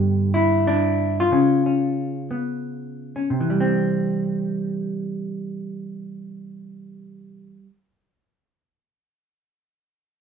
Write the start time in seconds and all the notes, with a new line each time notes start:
Already playing: G2 D3 B3 D4 G4
0.34 E4
0.67 D4
1.20 F4
1.31 C#3 C#4
1.66 C#4
2.31 B3
3.16 C#4
3.30 C3
3.40 E3
3.50 G3
3.60 C4